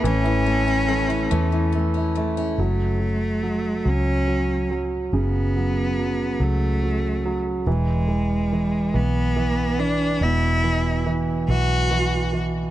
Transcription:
X:1
M:6/8
L:1/16
Q:3/8=47
K:F#m
V:1 name="Cello"
C8 z4 | A,6 C4 z2 | B,6 A,4 z2 | G,6 B,4 D2 |
E4 z2 F4 z2 |]
V:2 name="Steel-string acoustic guitar"
[E,A,C] E, A, C A, C E, E, A, C A, C | z12 | z12 | z12 |
z12 |]
V:3 name="Grand piano" clef=bass
[E,A,E] E A, E A, E A, E A, E A, E | F,2 F,2 F,2 F,2 F,2 F,2 | C,2 F,2 F,2 F,2 F,2 F,2 | E,2 E,2 E,2 E,2 E,2 E,2 |
B,,2 E,2 E,2 E,2 E,2 E,2 |]
V:4 name="Fingered electric bass" clef=bass
A,,,6 E,,6 | F,,,6 C,,6 | F,,,6 C,,6 | E,,,6 B,,,6 |
E,,,6 B,,,6 |]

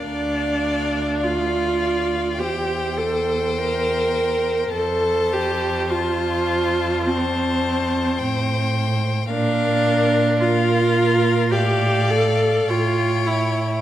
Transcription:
X:1
M:4/4
L:1/8
Q:1/4=52
K:Dm
V:1 name="Violin"
f2 f2 g4 | a2 a2 a2 g2 | f2 f2 f2 g2 |]
V:2 name="Violin"
d2 d2 c4 | c2 c2 c4 | B2 B2 d2 ^c2 |]
V:3 name="Viola"
D2 F2 G A B2 | A G F2 C3 z | D2 F2 G A F E |]
V:4 name="Cello" clef=bass
D,,4 E,,4 | F,,6 A,,2 | B,,4 A,,2 A,,2 |]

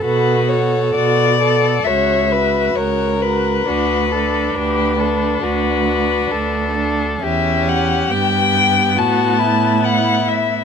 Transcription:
X:1
M:4/4
L:1/8
Q:1/4=67
K:Bm
V:1 name="Violin"
B c d2 e2 c B- | B2 G A B3 z | e f g2 a2 f e |]
V:2 name="Violin"
F2 F A c B ^A2 | F A B2 F2 A2 | G4 F E3 |]
V:3 name="Viola"
A A2 A F F2 F | D D2 D2 D2 D | C2 B,6 |]
V:4 name="Cello" clef=bass
B,,2 B,,2 C,,2 C,,2 | D,,2 D,,2 D,,2 D,,2 | E,,2 G,,2 A,,4 |]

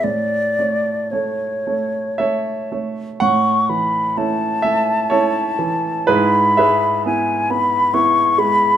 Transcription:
X:1
M:3/4
L:1/8
Q:1/4=63
K:A
V:1 name="Flute"
d2 c3 z | c' b a4 | b2 g b c' b |]
V:2 name="Grand piano"
z4 [Ace]2 | f3 e [EAc]2 | [EGB] [GBe]2 z3 |]
V:3 name="Grand piano"
A,, [A,Ac] [A,Ac] [A,Ac] A, [A,Ac] | A,, E, [A,CE] A, [A,C] E, | G,, G, [B,E] B, [B,E] G, |]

